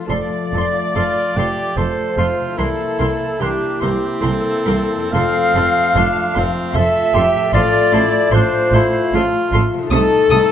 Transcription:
Already playing: D3 F3 A3 D4 F4
0.01 F4
0.05 F3 A3 A4
0.09 F1 F2 F4 D5 C6
0.53 F1 F2 F3 A4 C6
0.95 F1 F2 F3 F4 A4 C6
1.36 F1 F2 F3 G4 A4 C6
1.75 F1 F2 A3 F4 A4 C5 C6
1.79 F3
2.17 F1 F2 F3 F4 A4 C6
2.40 C3
2.45 C4
2.49 E4
2.53 A#4
2.58 C2 E3 A#3 E4 A4 A#4 C6
2.99 C2 E3 A#4 C6
3.39 C2 E3 A#3 D4 E4 G4 A#4 C6
3.81 C2 E3 C4 A#4 C6
4.20 C2 E3 A4 A#4 C6
4.66 C2 E3 A#4 C6
4.95 F2
5.00 C4 F4
5.09 A3 A4 F5
5.13 F1 F2 F3 C4 F4 A4 F5 C6
5.55 F1 F2 F3 A4 C6
5.95 F1 F2 F3 D4 A4 C6
6.35 F1 F2 F3 C4 A4 C6
6.74 F1 F2 F3 A4 E5 C6
7.14 F1 F2 F3 G4 A4 C6
7.34 A2
7.39 A3
7.43 F4
7.48 F4 A4
7.52 A1 A2 F3 A3 F4 A4 D5 C6
7.92 A1 A2 F3 E4 A4 C6
8.30 A1 A2 F3 A3 D4 F4 A4 C5 C6
8.72 A1 A2 F3 E4 A4 C6
9.12 A1 A2 F3 F4 A4 C6
9.52 A1 A2 F3 A4 C6
9.74 C3
9.78 A3
9.83 D#4
9.87 C2 A3 A4
9.91 C3 A3 D#4 A4 D#6
10.30 C2 C3 A3 A4 D#6

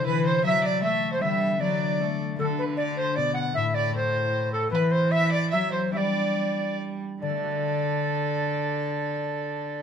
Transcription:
Already playing: G5
0.04 E3 E4 B4
0.26 C5
0.44 F#3 E5
0.64 D5
0.82 A3 E5
1.12 C5
1.18 B3 D4 E5
1.22 D3 G3 E5
1.56 B3 D4 D5
1.61 F#3 D5
2.00 A3
2.36 D3 A3 D4 F#4 A4
2.41 A4
2.58 B4
2.77 D5
2.96 C5
3.16 B2 D5
3.34 F#5
3.53 A2 A3 E4 A4 E5
3.74 D5
3.91 A3 E4 A4
3.95 C5
4.52 A4
4.68 B3 E4 B4 G5
4.72 E3 B4
4.91 C5
5.11 E5
5.32 D5
5.51 F#3 E5
5.72 C5
5.90 G3 B3 D4 G4 D5 E5
5.94 G3 D5
7.21 D3 A4 D5
7.29 A3
7.37 D4
7.43 F#4
7.51 D5

